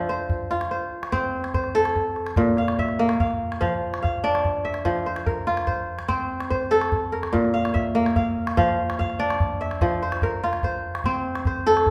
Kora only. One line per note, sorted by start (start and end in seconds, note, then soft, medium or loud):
0.00 2.22 F3 medium
0.00 0.94 D4 medium
0.00 0.38 D5 medium
0.00 0.57 E5 medium
0.09 0.71 C5 medium
0.51 2.02 F4 medium
0.71 1.12 C5 medium
1.12 2.92 C4 medium
1.12 1.54 C5 medium
1.54 2.73 C5 medium
1.75 2.43 A4 medium
2.37 4.71 A#2 medium
2.58 3.20 F5 medium
2.79 3.67 E5 medium
2.99 4.92 A#3 medium
3.20 3.60 F5 medium
3.61 4.84 F3 medium
3.61 4.02 F5 medium
4.02 4.71 F5 medium
4.24 5.92 D4 medium
4.24 5.35 D5 medium
4.65 5.53 E5 medium
4.85 7.19 F3 medium
5.06 5.67 C5 medium
5.26 6.54 A#4 medium
5.47 6.98 F4 medium
5.67 6.08 C5 medium
6.08 7.88 C4 medium
6.08 6.50 C5 medium
6.50 7.69 C5 medium
6.71 7.18 A4 medium
7.12 8.40 A#4 medium
7.33 9.67 A#2 medium
7.54 8.16 F5 medium
7.74 8.63 E5 medium
7.95 9.88 A#3 medium
8.16 8.57 F5 medium
8.57 9.80 F3 medium
8.57 8.99 F5 medium
8.99 9.67 F5 medium
9.19 10.87 D4 medium
9.19 10.30 D5 medium
9.61 10.49 E5 medium
9.82 11.90 F3 medium
10.02 10.64 C5 medium
10.23 11.50 A#4 medium
10.43 11.90 F4 medium
10.64 11.05 C5 medium
11.05 11.90 C4 medium
11.05 11.47 C5 medium
11.47 11.90 C5 medium
11.67 11.90 A4 medium